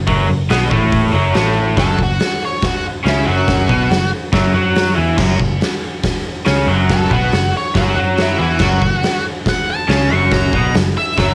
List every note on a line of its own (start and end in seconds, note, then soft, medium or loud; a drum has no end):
0.07 0.28 F#1 medium
0.07 0.27 F#2 loud
0.07 0.28 F#3 loud
0.07 kick loud
0.07 open hi-hat medium
0.28 0.49 F#1 medium
0.28 0.46 F#2 medium
0.49 0.70 B1 loud
0.49 0.69 B2 medium
0.49 0.70 B3 loud
0.49 snare loud
0.49 open hi-hat medium
0.70 1.11 A1 loud
0.70 1.13 A2 loud
0.70 1.13 A3 loud
0.70 kick medium
0.92 kick loud
0.92 open hi-hat medium
1.12 1.34 F#1 loud
1.12 1.34 F#2 medium
1.12 1.34 F#3 loud
1.32 1.75 A1 loud
1.32 1.76 A2 loud
1.32 1.76 A3 loud
1.32 snare loud
1.32 open hi-hat medium
1.77 1.97 F#1 medium
1.77 1.96 F#2 medium
1.77 1.98 F#3 loud
1.77 1.99 A4 loud
1.77 kick loud
1.77 snare loud
1.77 open hi-hat medium
1.97 2.19 F#1 medium
1.97 2.15 F#2 medium
1.97 kick medium
2.03 2.43 F#4 medium
2.20 snare loud
2.20 open hi-hat medium
2.45 2.64 C#5 loud
2.62 2.85 F#4 loud
2.62 kick loud
2.62 snare loud
2.62 open hi-hat medium
3.03 3.25 C#2 medium
3.03 3.25 C#3 loud
3.03 3.26 C#4 loud
3.03 snare loud
3.03 open hi-hat medium
3.09 3.27 E4 medium
3.25 3.67 F#1 loud
3.25 3.68 F#2 loud
3.25 3.68 F#3 medium
3.25 4.10 F#4 medium
3.48 kick loud
3.48 snare loud
3.48 open hi-hat medium
3.68 3.89 B1 medium
3.68 3.90 B2 loud
3.68 3.90 B3 loud
3.68 kick medium
3.90 4.11 F#1 medium
3.90 4.08 F#2 medium
3.90 snare loud
3.90 open hi-hat medium
4.33 4.53 F#1 loud
4.33 4.54 F#2 medium
4.33 4.52 F#3 loud
4.33 kick loud
4.33 snare loud
4.33 open hi-hat medium
4.54 4.94 F#2 medium
4.54 4.95 F#3 medium
4.54 4.96 F#4 loud
4.76 snare loud
4.76 open hi-hat medium
4.96 5.18 E2 loud
4.96 5.17 E3 loud
4.96 5.18 E4 loud
5.17 5.39 F#1 loud
5.17 5.37 F#2 loud
5.17 5.39 F#3 medium
5.17 kick loud
5.17 snare loud
5.17 crash loud
5.38 5.59 F#1 medium
5.38 5.56 F#2 medium
5.38 kick loud
5.61 snare loud
5.61 open hi-hat medium
6.03 kick loud
6.03 snare loud
6.03 open hi-hat medium
6.45 6.66 C#2 loud
6.45 6.67 C#3 medium
6.45 6.67 C#4 loud
6.45 snare loud
6.45 open hi-hat medium
6.67 7.07 F#1 loud
6.67 7.10 F#2 loud
6.67 7.10 F#3 loud
6.89 7.11 A4 loud
6.89 kick loud
6.89 snare loud
6.89 open hi-hat medium
7.10 7.31 B1 medium
7.10 7.31 B2 medium
7.10 7.31 B3 loud
7.10 7.53 F#4 medium
7.10 kick loud
7.32 7.52 F#1 medium
7.32 7.49 F#2 medium
7.32 snare loud
7.32 open hi-hat medium
7.57 7.76 C#5 loud
7.75 7.95 F#1 loud
7.75 7.96 F#2 medium
7.75 7.94 F#3 loud
7.75 7.97 F#4 loud
7.75 kick loud
7.75 snare loud
7.75 open hi-hat medium
7.96 8.37 F#2 loud
7.96 8.38 F#3 medium
7.96 8.38 F#4 loud
8.18 snare loud
8.18 open hi-hat medium
8.22 8.41 E4 medium
8.39 8.59 E2 medium
8.39 8.60 E3 medium
8.39 8.60 E4 loud
8.39 9.23 F#4 loud
8.59 8.80 F#1 loud
8.59 8.80 F#2 medium
8.59 8.82 F#3 loud
8.59 kick loud
8.59 snare loud
8.59 crash loud
8.82 9.02 F#1 medium
8.82 8.99 F#2 medium
8.82 kick medium
9.03 snare loud
9.03 open hi-hat medium
9.46 9.68 F#5 loud
9.46 kick loud
9.46 snare loud
9.46 open hi-hat medium
9.70 9.90 A5 loud
9.88 10.09 C#2 loud
9.88 10.09 C#3 loud
9.88 10.09 C#4 loud
9.88 10.14 A5 medium
9.88 snare loud
9.88 open hi-hat medium
10.09 10.51 F#1 medium
10.09 10.52 F#2 loud
10.09 10.52 F#3 loud
10.14 10.32 C#6 loud
10.31 10.74 A#5 loud
10.31 kick loud
10.31 snare loud
10.31 open hi-hat medium
10.53 10.73 B1 loud
10.53 10.74 B2 loud
10.53 10.74 B3 loud
10.53 kick loud
10.74 10.95 F#1 medium
10.74 10.92 F#2 medium
10.74 snare loud
10.74 open hi-hat medium
10.98 11.34 E5 loud
11.17 11.34 F#1 loud
11.17 11.34 F#2 loud
11.17 11.34 F#3 loud
11.17 kick loud
11.17 snare loud
11.17 open hi-hat medium